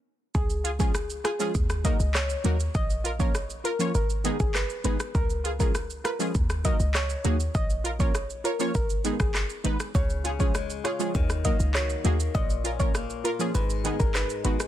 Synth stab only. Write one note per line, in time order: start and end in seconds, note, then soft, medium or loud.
0.64 0.70 F4 medium
0.64 0.71 G#4 medium
0.79 0.91 F3 medium
0.79 0.92 G#3 medium
0.79 0.92 C#4 medium
0.79 0.92 F4 medium
0.79 0.92 G#4 medium
1.24 1.30 F4 medium
1.24 1.31 G#4 medium
1.39 1.51 F3 medium
1.39 1.52 G#3 medium
1.39 1.52 C#4 medium
1.39 1.52 F4 medium
1.39 1.52 G#4 medium
1.84 1.96 F#3 medium
1.84 1.97 A#3 medium
1.84 1.97 D#4 medium
1.84 1.97 F#4 medium
1.84 1.97 A#4 medium
2.44 2.56 F#3 medium
2.44 2.57 A#3 medium
2.44 2.57 D#4 medium
2.44 2.57 F#4 medium
2.44 2.57 A#4 medium
3.04 3.10 F4 medium
3.04 3.11 A#4 medium
3.19 3.31 F3 medium
3.19 3.32 A#3 medium
3.19 3.32 C#4 medium
3.19 3.32 F4 medium
3.19 3.32 A#4 medium
3.64 3.70 F4 medium
3.64 3.71 A#4 medium
3.79 3.91 F3 medium
3.79 3.92 A#3 medium
3.79 3.92 C#4 medium
3.79 3.92 F4 medium
3.79 3.92 C#5 medium
4.24 4.36 D#3 medium
4.24 4.37 G#3 medium
4.24 4.37 B3 medium
4.24 4.37 D#4 medium
4.24 4.37 G#4 medium
4.84 4.96 D#3 medium
4.84 4.97 G#3 medium
4.84 4.97 B3 medium
4.84 4.97 D#4 medium
4.84 4.97 G#4 medium
5.44 5.50 F4 medium
5.44 5.51 G#4 medium
5.59 5.71 F3 medium
5.59 5.72 G#3 medium
5.59 5.72 C#4 medium
5.59 5.72 F4 medium
5.59 5.72 G#4 medium
6.04 6.10 F4 medium
6.04 6.11 B4 medium
6.19 6.31 F3 medium
6.19 6.32 G#3 medium
6.19 6.32 C#4 medium
6.19 6.32 F4 medium
6.19 6.32 G#4 medium
6.64 6.76 F#3 medium
6.64 6.77 A#3 medium
6.64 6.77 D#4 medium
6.64 6.77 F#4 medium
6.64 6.77 A#4 medium
7.24 7.36 F#3 medium
7.24 7.37 A#3 medium
7.24 7.37 D#4 medium
7.24 7.37 F#4 medium
7.24 7.37 G#4 medium
7.84 7.90 F4 medium
7.84 7.91 A#4 medium
7.99 8.11 F3 medium
7.99 8.12 A#3 medium
7.99 8.12 C#4 medium
7.99 8.12 F4 medium
7.99 8.12 A#4 medium
8.44 8.50 F4 medium
8.44 8.51 C#5 medium
8.59 8.71 F3 medium
8.59 8.72 A#3 medium
8.59 8.72 C#4 medium
8.59 8.72 F4 medium
8.59 8.72 C#5 medium
9.04 9.16 D#3 medium
9.04 9.17 G#3 medium
9.04 9.17 B3 medium
9.04 9.17 D#4 medium
9.04 9.17 G#4 medium
9.64 9.76 D#3 loud
9.64 9.77 G#3 medium
9.64 9.77 B3 medium
9.64 9.77 D#4 medium
9.64 9.77 B4 loud
10.24 10.30 F4 medium
10.24 10.31 G#4 medium
10.39 10.51 F3 medium
10.39 10.52 G#3 medium
10.39 10.52 C#4 medium
10.39 10.52 F4 medium
10.39 10.52 G#4 medium
10.84 10.90 F4 medium
10.84 10.91 G#4 medium
10.99 11.11 F3 medium
10.99 11.12 G#3 medium
10.99 11.12 C#4 medium
10.99 11.12 F4 medium
10.99 11.12 G#4 medium
11.44 11.56 F#3 medium
11.44 11.57 A#3 medium
11.44 11.57 D#4 medium
11.44 11.57 F#4 medium
11.44 11.57 A#4 medium
12.04 12.16 F#3 medium
12.04 12.17 A#3 medium
12.04 12.17 D#4 medium
12.04 12.17 F#4 medium
12.04 12.17 G#4 medium
12.64 12.70 F4 medium
12.64 12.71 A#4 medium
12.79 12.91 F3 medium
12.79 12.92 A#3 medium
12.79 12.92 C#4 medium
12.79 12.92 F4 medium
12.79 12.92 A#4 medium
13.24 13.30 F4 medium
13.24 13.31 A#4 medium
13.39 13.51 F3 medium
13.39 13.52 A#3 medium
13.39 13.52 C#4 medium
13.39 13.52 F4 medium
13.39 13.52 G#4 medium
13.84 13.96 D#3 medium
13.84 13.97 G#3 medium
13.84 13.97 B3 medium
13.84 13.97 D#4 medium
13.84 13.97 G#4 medium
14.44 14.56 D#3 medium
14.44 14.57 G#3 medium
14.44 14.57 B3 medium
14.44 14.57 D#4 medium
14.44 14.57 F#4 medium